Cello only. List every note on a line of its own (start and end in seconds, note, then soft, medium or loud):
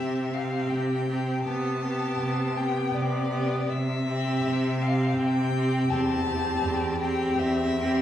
0.00 0.62 C3 medium
0.70 1.37 C3 soft
1.46 2.11 C3 soft
2.20 2.85 C3 medium
2.94 3.60 C3 medium
3.69 4.34 C3 medium
4.44 5.08 C3 medium
5.17 5.81 C3 medium
5.89 6.54 E2 medium
6.62 7.29 E2 medium
7.38 8.02 E2 medium